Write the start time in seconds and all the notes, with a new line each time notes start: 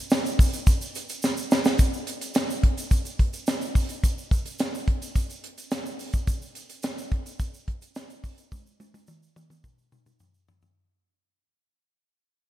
0.10 snare, shaker
0.25 closed hi-hat, shaker
0.39 kick, open hi-hat, shaker
0.54 closed hi-hat, shaker
0.67 kick, closed hi-hat, shaker
0.81 closed hi-hat, shaker
0.95 closed hi-hat, shaker
1.09 closed hi-hat, shaker
1.22 snare, shaker
1.37 shaker
1.51 snare, shaker
1.65 snare, shaker
1.79 kick, closed hi-hat, shaker
1.94 shaker
2.07 closed hi-hat, shaker
2.21 closed hi-hat, shaker
2.34 snare, closed hi-hat, shaker
2.50 shaker
2.63 kick, closed hi-hat
2.78 closed hi-hat, shaker
2.91 kick, closed hi-hat, shaker
3.05 closed hi-hat, shaker
3.19 kick, closed hi-hat
3.33 closed hi-hat, shaker
3.47 snare, closed hi-hat, shaker
3.61 closed hi-hat, shaker
3.75 kick, open hi-hat, shaker
3.89 closed hi-hat, shaker
4.04 kick, closed hi-hat, shaker
4.18 shaker
4.31 kick, closed hi-hat, shaker
4.46 closed hi-hat, shaker
4.59 snare, closed hi-hat, shaker
4.75 shaker
4.88 kick, closed hi-hat
5.02 closed hi-hat, shaker
5.16 kick, closed hi-hat, shaker
5.30 closed hi-hat, shaker
5.44 closed hi-hat
5.58 closed hi-hat, shaker
5.71 snare, closed hi-hat, shaker
5.86 shaker
5.99 open hi-hat, shaker
6.13 kick, closed hi-hat, shaker
6.27 kick, closed hi-hat, shaker
6.42 shaker
6.55 closed hi-hat, shaker
6.70 closed hi-hat, shaker
6.83 snare, closed hi-hat, shaker
6.98 shaker
7.12 kick, closed hi-hat
7.26 closed hi-hat, shaker
7.39 kick, closed hi-hat, shaker
7.54 shaker
7.68 kick, closed hi-hat
7.82 closed hi-hat, shaker
7.95 snare, closed hi-hat, shaker
8.10 closed hi-hat, shaker
8.24 kick, open hi-hat, shaker
8.38 closed hi-hat, shaker
8.52 kick, high tom, shaker
8.67 shaker
8.80 high tom, shaker
8.94 high tom, shaker
9.07 mid tom, shaker
9.23 shaker
9.36 mid tom, shaker
9.50 mid tom, shaker
9.64 kick, mid tom, shaker
9.78 shaker
9.92 mid tom, shaker
10.06 mid tom, shaker
10.19 floor tom, shaker
10.34 shaker
10.48 floor tom, shaker
10.62 floor tom, shaker